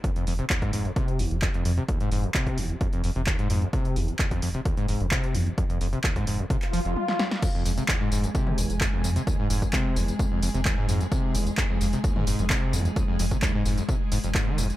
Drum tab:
CC |----------------|----------------|----------------|----------------|
HH |xxoxxxoxxxoxxxox|xxoxxxoxxxoxxxox|xxoxxxoxxxoxxxox|xxoxxxo-xxox----|
TB |----------------|----------------|----------------|----------------|
CP |----x-------x---|----x-------x---|----x-------x---|----x----x------|
SD |----------------|----------------|----------------|-------------ooo|
T1 |----------------|----------------|----------------|------------o---|
T2 |----------------|----------------|----------------|----------------|
BD |o---oo--o---o---|o---oo--o---o---|o---oo--o---o---|o---oo--o-------|

CC |x---------------|----------------|----------------|----------------|
HH |x-oxx-oxx-oxx-ox|x-oxx-oxx-oxx-ox|x-oxx-oxx-oxx-ox|x-oxx-oxx-oxx-ox|
TB |x-xxx-xxx-xxx-xx|x-xxx-xxx-xxx-xx|x-xxx-xxx-xxx-xx|x-xxx-xxx-xxx-xx|
CP |----x-------x---|----x-------x---|----x-------x---|----x-------x---|
SD |----------------|----------------|----------------|----------------|
T1 |----------------|----------------|----------------|----------------|
T2 |---------o------|----------------|---------o------|----------------|
BD |o---o---o---o---|o--oo---o---o---|o---o---o---o---|o--oo---o---o---|